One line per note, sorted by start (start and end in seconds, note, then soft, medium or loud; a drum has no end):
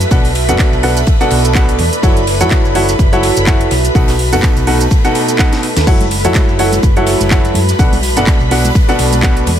0.00 0.89 F#4 medium
0.00 5.86 B4 medium
0.00 0.89 E5 medium
0.00 0.89 A5 medium
0.00 5.86 B5 medium
0.00 snare soft
0.00 closed hi-hat medium
0.00 shaker medium
0.11 0.50 B1 loud
0.11 0.28 B2 medium
0.11 0.28 D4 medium
0.11 0.28 A4 medium
0.11 2.71 A4 medium
0.11 0.28 B4 medium
0.11 0.28 F#5 medium
0.11 kick loud
0.11 ride loud
0.11 shaker medium
0.25 open hi-hat medium
0.25 shaker soft
0.34 2.03 D5 medium
0.34 open hi-hat loud
0.34 ride medium
0.49 0.55 F#1 loud
0.49 0.81 B2 medium
0.49 0.81 D4 medium
0.49 0.81 A4 medium
0.49 0.81 B4 medium
0.49 0.81 F#5 loud
0.49 closed hi-hat medium
0.49 shaker medium
0.59 kick loud
0.59 snare loud
0.59 clap loud
0.59 ride medium
0.59 shaker medium
0.73 1.01 B1 medium
0.73 ride soft
0.73 shaker soft
0.83 1.00 B2 medium
0.83 1.00 D4 medium
0.83 1.00 A4 medium
0.83 1.00 B4 medium
0.83 1.00 F#5 loud
0.83 open hi-hat medium
0.83 open hi-hat loud
0.97 2.71 B5 medium
0.97 closed hi-hat medium
0.97 ride soft
0.97 shaker medium
1.07 kick loud
1.07 ride medium
1.07 shaker medium
1.21 1.53 B2 loud
1.21 1.53 D4 medium
1.21 1.53 A4 medium
1.21 1.53 B4 medium
1.21 1.53 F#5 loud
1.21 closed hi-hat soft
1.21 ride soft
1.21 shaker soft
1.30 1.79 B1 loud
1.30 open hi-hat loud
1.30 ride medium
1.45 closed hi-hat medium
1.45 shaker medium
1.55 1.81 B2 medium
1.55 1.81 D4 medium
1.55 1.81 A4 medium
1.55 1.81 B4 medium
1.55 1.81 F#5 loud
1.55 kick loud
1.55 snare loud
1.55 clap loud
1.55 ride medium
1.55 shaker medium
1.69 closed hi-hat medium
1.69 shaker soft
1.78 1.88 E2 medium
1.78 open hi-hat loud
1.78 ride medium
1.93 closed hi-hat medium
1.93 shaker medium
2.03 2.42 F#1 loud
2.03 2.20 F#3 medium
2.03 2.20 E4 medium
2.03 4.59 F#4 medium
2.03 2.20 A4 medium
2.03 2.20 C#5 medium
2.03 2.20 F#5 medium
2.03 kick loud
2.03 ride loud
2.03 shaker medium
2.17 closed hi-hat medium
2.17 shaker soft
2.27 open hi-hat loud
2.27 ride medium
2.41 2.47 F#2 loud
2.41 2.73 F#3 medium
2.41 2.73 E4 medium
2.41 2.73 A4 medium
2.41 2.73 C#5 medium
2.41 2.73 F#5 loud
2.41 closed hi-hat medium
2.41 shaker medium
2.51 kick loud
2.51 snare loud
2.51 clap loud
2.51 ride medium
2.51 shaker medium
2.65 2.93 F#1 medium
2.65 shaker soft
2.75 2.92 F#3 medium
2.75 2.92 E4 medium
2.75 2.92 A4 medium
2.75 2.92 C#5 medium
2.75 2.92 F#5 loud
2.75 open hi-hat loud
2.75 ride medium
2.79 4.59 A5 medium
2.89 snare medium
2.89 closed hi-hat medium
2.89 shaker medium
2.99 3.29 F#1 medium
2.99 kick loud
2.99 ride medium
2.99 shaker medium
3.13 3.45 F#3 medium
3.13 3.45 E4 medium
3.13 3.45 A4 medium
3.13 3.45 C#5 medium
3.13 3.45 F#5 loud
3.13 closed hi-hat soft
3.13 shaker soft
3.23 snare medium
3.23 open hi-hat loud
3.23 ride medium
3.37 3.65 F#1 loud
3.37 closed hi-hat medium
3.37 shaker medium
3.47 3.70 E4 medium
3.47 3.70 A4 medium
3.47 3.70 C#5 medium
3.47 3.70 F#5 loud
3.47 kick loud
3.47 snare loud
3.47 clap loud
3.47 ride medium
3.47 shaker medium
3.60 closed hi-hat medium
3.60 ride soft
3.60 shaker soft
3.71 3.87 B1 loud
3.71 6.65 A4 medium
3.71 snare loud
3.71 open hi-hat loud
3.71 ride medium
3.85 closed hi-hat medium
3.85 ride soft
3.85 shaker medium
3.95 4.34 B1 loud
3.95 4.12 B2 medium
3.95 4.12 D#4 medium
3.95 4.12 A4 medium
3.95 4.12 B4 medium
3.95 4.12 F#5 medium
3.95 kick loud
3.95 open hi-hat medium
3.95 shaker medium
4.08 snare loud
4.08 open hi-hat medium
4.08 ride medium
4.08 shaker soft
4.19 open hi-hat loud
4.19 ride soft
4.33 4.39 F#1 loud
4.33 4.65 B2 medium
4.33 4.65 D#4 medium
4.33 4.65 A4 medium
4.33 4.65 B4 medium
4.33 4.65 F#5 loud
4.33 closed hi-hat medium
4.33 open hi-hat medium
4.33 shaker medium
4.43 kick loud
4.43 snare loud
4.43 clap loud
4.43 ride medium
4.43 shaker medium
4.57 4.85 B1 medium
4.57 closed hi-hat soft
4.57 ride soft
4.57 shaker soft
4.67 4.84 B2 medium
4.67 4.84 D#4 medium
4.67 4.84 A4 medium
4.67 4.84 B4 medium
4.67 4.84 F#5 medium
4.67 6.53 B5 medium
4.67 open hi-hat medium
4.67 open hi-hat loud
4.81 closed hi-hat medium
4.81 shaker medium
4.91 kick loud
4.91 ride medium
4.91 shaker medium
5.04 5.37 B2 medium
5.04 5.37 D#4 medium
5.04 5.37 A4 medium
5.04 5.37 B4 medium
5.04 5.37 F#5 loud
5.04 closed hi-hat soft
5.04 ride soft
5.04 shaker soft
5.15 open hi-hat loud
5.15 ride medium
5.29 closed hi-hat medium
5.29 shaker medium
5.39 5.65 B2 medium
5.39 5.65 D#4 medium
5.39 5.65 A4 medium
5.39 5.65 B4 medium
5.39 5.65 F#5 loud
5.39 kick loud
5.39 snare loud
5.39 clap loud
5.39 ride medium
5.39 shaker medium
5.53 snare medium
5.53 closed hi-hat medium
5.53 shaker soft
5.63 open hi-hat loud
5.63 ride medium
5.77 5.83 D#2 medium
5.77 snare medium
5.77 snare loud
5.77 closed hi-hat medium
5.77 ride medium
5.77 shaker medium
5.87 6.26 F#1 loud
5.87 6.04 F#3 medium
5.87 6.04 E4 medium
5.87 8.57 F#4 medium
5.87 6.04 A4 medium
5.87 9.60 B4 medium
5.87 6.04 C#5 medium
5.87 6.04 F#5 medium
5.87 9.60 B5 medium
5.87 kick loud
5.87 crash medium
5.87 ride medium
5.87 tambourine soft
5.87 shaker medium
6.01 closed hi-hat medium
6.01 high conga loud
6.01 shaker soft
6.11 8.57 E5 medium
6.11 open hi-hat loud
6.11 ride medium
6.11 tambourine medium
6.24 6.31 F#2 loud
6.24 6.57 F#3 medium
6.24 6.57 E4 medium
6.24 6.57 A4 medium
6.24 6.57 C#5 medium
6.24 6.57 F#5 loud
6.24 closed hi-hat medium
6.24 tambourine medium
6.24 shaker medium
6.34 kick loud
6.34 snare loud
6.34 clap loud
6.34 ride medium
6.34 tambourine soft
6.34 high conga medium
6.34 shaker medium
6.49 6.77 F#1 medium
6.49 shaker soft
6.59 6.76 F#3 medium
6.59 6.76 E4 medium
6.59 6.76 A4 medium
6.59 6.76 C#5 medium
6.59 6.76 F#5 loud
6.59 open hi-hat loud
6.59 ride medium
6.59 tambourine loud
6.72 8.51 A5 medium
6.72 snare medium
6.72 closed hi-hat medium
6.72 tambourine soft
6.72 high conga loud
6.72 shaker medium
6.83 7.13 F#1 medium
6.83 kick loud
6.83 ride medium
6.83 tambourine soft
6.83 shaker medium
6.97 7.29 F#3 loud
6.97 7.29 E4 medium
6.97 7.29 A4 medium
6.97 7.29 C#5 medium
6.97 7.29 F#5 loud
6.97 closed hi-hat soft
6.97 shaker soft
7.06 snare medium
7.06 open hi-hat loud
7.06 ride medium
7.06 tambourine loud
7.21 7.49 F#1 loud
7.21 closed hi-hat medium
7.21 tambourine medium
7.21 high conga medium
7.21 shaker medium
7.31 7.57 F#3 medium
7.31 7.57 E4 medium
7.31 7.57 A4 medium
7.31 7.57 C#5 medium
7.31 7.57 F#5 loud
7.31 kick loud
7.31 snare loud
7.31 clap loud
7.31 ride medium
7.31 tambourine soft
7.31 shaker medium
7.45 closed hi-hat medium
7.45 ride soft
7.45 shaker soft
7.54 7.71 F#2 loud
7.54 open hi-hat loud
7.54 ride medium
7.54 tambourine loud
7.54 high conga loud
7.69 snare soft
7.69 closed hi-hat medium
7.69 tambourine medium
7.69 shaker medium
7.79 8.17 B1 loud
7.79 7.96 B2 medium
7.79 7.96 D4 medium
7.79 7.96 A4 medium
7.79 9.60 A4 medium
7.79 7.96 B4 medium
7.79 7.96 F#5 medium
7.79 kick loud
7.79 ride loud
7.79 tambourine soft
7.79 shaker medium
7.89 9.60 D5 medium
7.89 open hi-hat medium
7.89 high conga loud
7.93 shaker soft
8.03 open hi-hat loud
8.03 ride medium
8.03 tambourine loud
8.16 8.23 F#1 loud
8.16 8.49 B2 medium
8.16 8.49 D4 medium
8.16 8.49 A4 medium
8.16 8.49 B4 medium
8.16 8.49 F#5 loud
8.16 closed hi-hat medium
8.16 tambourine medium
8.16 shaker medium
8.27 kick loud
8.27 snare loud
8.27 clap loud
8.27 ride medium
8.27 tambourine soft
8.27 high conga medium
8.27 shaker medium
8.40 8.69 B1 medium
8.40 9.60 B5 medium
8.40 ride soft
8.40 shaker soft
8.51 8.68 B2 medium
8.51 8.68 D4 medium
8.51 8.68 A4 medium
8.51 8.68 B4 medium
8.51 8.68 F#5 loud
8.51 open hi-hat loud
8.51 open hi-hat medium
8.51 tambourine medium
8.65 closed hi-hat medium
8.65 ride soft
8.65 tambourine medium
8.65 high conga medium
8.65 shaker medium
8.75 kick loud
8.75 ride medium
8.75 tambourine soft
8.75 shaker medium
8.89 9.21 B2 loud
8.89 9.21 D4 medium
8.89 9.21 A4 medium
8.89 9.21 B4 medium
8.89 9.21 F#5 loud
8.89 closed hi-hat soft
8.89 ride soft
8.89 shaker soft
8.99 9.47 B1 loud
8.99 open hi-hat loud
8.99 ride medium
8.99 tambourine loud
9.12 closed hi-hat medium
9.12 tambourine medium
9.12 high conga medium
9.12 shaker medium
9.23 9.49 B2 medium
9.23 9.49 D4 medium
9.23 9.49 A4 medium
9.23 9.49 B4 medium
9.23 9.49 F#5 loud
9.23 kick loud
9.23 snare loud
9.23 clap loud
9.23 ride medium
9.23 shaker medium
9.37 closed hi-hat medium
9.37 shaker soft
9.47 9.56 E2 medium
9.47 open hi-hat loud
9.47 ride medium
9.47 tambourine medium
9.47 high conga loud